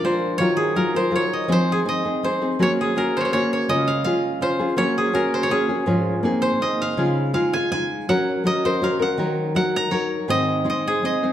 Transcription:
Already playing: F3 G#4 A#4 D5 F5
0.04 G#3 D4 F4 A#4 C5
0.38 D#3 F#3 D#4 F4 A#4 C#5
0.57 G#4
0.76 F#3 D#4 F4 A#4
0.95 D#4 F4 A#4 C5
1.10 F#3 D#4 F4 A#4
1.16 C#5
1.33 D#5
1.48 F3 G#3 C4 D#4 G#4
1.52 C5
1.72 G#4
1.85 G#3 C4 D#4 G#4 D#5
2.05 C4 D#4 G#4
2.23 G#3 C4 D#4 G#4 C5
2.41 C4 D#4 G#4
2.59 F#3 A#3 C#4 F#4 G#4 C#5
2.81 G#4
2.96 A#3 C#4 F#4 G#4 A#4
3.17 C5 C#5
3.25 C5
3.32 A#3 C#4 F#4 G#4 C#5
3.53 C#5
3.68 C#3 G#3 C#4 F4 G#4 D#5
3.88 F5
4.04 G#3 C#4 F4 G#4 F5
4.41 G#3 C#4 F4 G#4 C5
4.59 C#4 F4 G#4
4.76 F#3 A#3 C#4 F#4 G#4 C#5
4.98 G#4
5.13 A#3 C#4 F#4 G#4 A#4
5.34 C5
5.43 C#5
5.50 A#3 C#4 F#4 G#4
5.69 C#4 F#4 G#4
5.86 G#2 F3 G#3 C#4 F4 G#4
6.23 A#3 C4 D#4 G#4
6.42 C5
6.60 A#3 C4 D#4 G#4 D#5
6.82 F5
6.97 C#3 G#3 D#4 F4 G#4
7.33 G#3 D#4 F4 G#4 F5
7.53 D#4 F4 G#4 G#5
7.71 G#3 D#4 F4 G#4 G#5
8.09 F#3 C#4 F#4 A#4 F#5
8.44 F#3 C#4 F#4 A#4 D#5
8.65 C#4 F#4 A#4 C5
8.82 F#3 C#4 F#4 A#4 F5
8.99 C#4 F#4 A#4 F#5
9.17 D#3 F#3 D#4 F#4 A#4
9.55 F#3 D#4 F#4 A#4 F#5
9.76 A#5
9.90 F#3 D#4 F#4 A#4 C#5
10.28 G#2 D#3 G#3 C4 D#4 C5 D#5
10.64 G#3 C4 D#4 C5
10.70 D#5
10.88 G#4
11.03 G#3 C4 D#4 C5 D#5
11.23 G#3 C4 D#4 C5

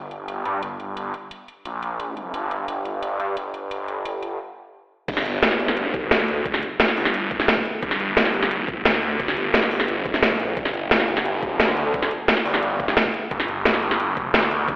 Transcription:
Already playing: G1
0.11 closed hi-hat
0.28 closed hi-hat
0.45 G2, closed hi-hat
0.63 G1, closed hi-hat
0.80 closed hi-hat
0.97 closed hi-hat
1.14 closed hi-hat
1.31 closed hi-hat
1.48 closed hi-hat
1.65 A#1, closed hi-hat
1.83 closed hi-hat
2.00 closed hi-hat
2.17 closed hi-hat
2.34 G1, closed hi-hat
2.51 closed hi-hat
2.68 G1, closed hi-hat
2.85 closed hi-hat
3.03 closed hi-hat
3.20 G2, closed hi-hat
3.37 G1, closed hi-hat
3.54 closed hi-hat
3.71 closed hi-hat
3.88 G1, closed hi-hat
4.05 G1, closed hi-hat
4.23 closed hi-hat
5.08 G1, kick, closed hi-hat, crash
5.17 snare
5.25 G1, closed hi-hat
5.43 snare, closed hi-hat
5.51 snare
5.60 closed hi-hat
5.68 snare
5.77 closed hi-hat
5.94 kick, closed hi-hat
6.11 D2, snare, closed hi-hat
6.20 snare
6.28 closed hi-hat
6.45 kick, closed hi-hat
6.54 snare
6.63 closed hi-hat
6.80 snare, closed hi-hat
6.88 snare
6.97 G1, open hi-hat
7.05 snare
7.14 closed hi-hat
7.31 kick, closed hi-hat
7.40 snare
7.48 snare, closed hi-hat
7.57 kick
7.65 closed hi-hat
7.83 G1, kick, closed hi-hat
7.91 snare
8.00 G1, closed hi-hat
8.17 snare, closed hi-hat
8.25 snare
8.34 closed hi-hat
8.43 snare
8.51 closed hi-hat
8.68 kick, closed hi-hat
8.85 D2, snare, closed hi-hat
8.94 snare
9.03 closed hi-hat
9.20 kick, closed hi-hat
9.28 snare
9.37 G1, closed hi-hat
9.54 snare, closed hi-hat
9.63 snare
9.71 open hi-hat
9.80 snare
9.88 closed hi-hat
9.97 F#1
10.05 kick, closed hi-hat
10.14 snare
10.23 A#1, snare, closed hi-hat
10.31 kick
10.40 closed hi-hat
10.57 G1, kick, closed hi-hat
10.65 snare
10.74 G1, closed hi-hat
10.91 snare, closed hi-hat
11.00 snare
11.08 closed hi-hat
11.17 snare
11.25 closed hi-hat
11.34 F#1
11.42 kick, closed hi-hat
11.60 D2, snare, closed hi-hat
11.68 snare
11.77 closed hi-hat
11.94 kick, closed hi-hat
12.03 snare
12.11 closed hi-hat
12.28 snare, closed hi-hat
12.37 snare
12.45 G1, open hi-hat
12.54 snare
12.63 closed hi-hat
12.80 kick, closed hi-hat
12.88 snare
12.97 snare, closed hi-hat
13.05 kick
13.14 closed hi-hat
13.31 G1, kick, closed hi-hat
13.40 snare
13.48 G1, closed hi-hat
13.65 snare, closed hi-hat
13.74 snare
13.83 closed hi-hat
13.91 snare
14.00 closed hi-hat
14.08 F#1
14.17 kick, closed hi-hat
14.34 D2, snare, closed hi-hat
14.43 snare
14.51 closed hi-hat
14.68 kick, closed hi-hat

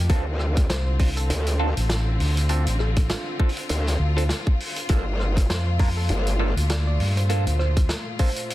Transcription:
0.09 D2 D3 C4 D4 F4 A4, kick, closed hi-hat
0.39 cross-stick
0.57 kick, cross-stick, closed hi-hat
0.69 C2 C5, snare, closed hi-hat
0.87 C5
0.99 C4 D4 F4 C5, kick, open hi-hat
1.17 A4, closed hi-hat
1.30 D2, closed hi-hat
1.47 closed hi-hat
1.59 C4 D4 F4 A4
1.77 A1, closed hi-hat
1.89 snare, closed hi-hat
2.19 D2, open hi-hat
2.37 closed hi-hat
2.49 C4 D4 F4 A4, closed hi-hat
2.67 A1, closed hi-hat
2.79 A4, cross-stick
2.96 kick, cross-stick, closed hi-hat
3.09 F4, snare, closed hi-hat
3.39 C4 D4 F4 A4, kick
3.49 open hi-hat
3.57 closed hi-hat
3.69 D2, closed hi-hat
3.86 snare, closed hi-hat
3.99 D2
4.17 C4 D4 F4 A4, closed hi-hat
4.29 snare, closed hi-hat
4.47 kick
4.60 open hi-hat
4.76 closed hi-hat
4.89 G1 A#2 A3 A#3 D4 F4 A4, kick, closed hi-hat
5.20 cross-stick
5.37 kick, cross-stick, closed hi-hat
5.49 F2 C5, snare, closed hi-hat
5.67 C5
5.79 A#3 D4 F4 A#4, kick, open hi-hat
5.97 A4
6.09 G1, closed hi-hat
6.27 closed hi-hat
6.39 A#3 D4 F4 A4
6.56 D2, closed hi-hat
6.70 D5, snare, closed hi-hat
6.87 D5
6.99 G2, open hi-hat
7.17 C5, closed hi-hat
7.29 A#3 D4 F4 A4, closed hi-hat
7.46 D2, closed hi-hat
7.59 C5, cross-stick
7.77 kick, cross-stick, closed hi-hat
7.89 snare, closed hi-hat
8.19 A#3 D4 F4 A4 C5, kick, open hi-hat
8.36 closed hi-hat
8.50 closed hi-hat

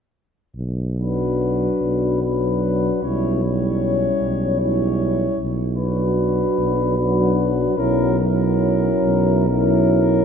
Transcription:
0.56 B1
0.99 F#3 D4 F#4 B4
1.82 B1
2.22 F#3 D4 F#4 B4
3.02 B1 G3 C#4 E4 C#5
3.43 G3 C#4 E4 C#5
4.22 B1
4.60 G3 C#4 E4 C#5
5.40 B1
5.77 F#3 D4 F#4 B4
6.59 B1
6.97 F#3 D4 F#4 B4
7.77 B1 F#3 C#4 E4 A#4
8.19 F#3 C#4 E4 A#4
9.04 B1
9.48 F#3 C#4 E4 A#4

